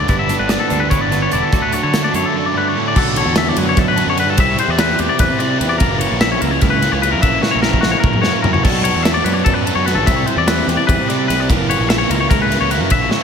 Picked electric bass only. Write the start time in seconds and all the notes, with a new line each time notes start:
0.09 G1
0.40 G1
0.71 D2
1.01 G1
1.33 E1
1.53 D2
1.84 D3
2.14 F#2
2.96 B1
3.26 E2
3.57 F#2
3.77 F#2
4.06 F#2
4.27 G2
4.38 C2
4.68 E2
4.99 E2
5.20 E2
5.30 C3
5.60 E2
5.81 F#1
6.12 A#1
6.42 C#2
6.62 C#2
6.92 C#2
7.13 F#2
7.23 A#1
7.55 A#1
7.84 A#1
8.04 A#1
8.14 F#2
8.45 F#2
8.64 B1
8.95 E2
9.25 F#2
9.46 F#2
9.75 F#2
9.94 A1
10.08 C2
10.36 E2
10.67 E2
10.88 E2
10.99 C3
11.29 C2
11.50 F#1
11.79 A#1
12.10 C#2
12.30 C#2
12.60 C#2
12.82 F#2
12.91 A#1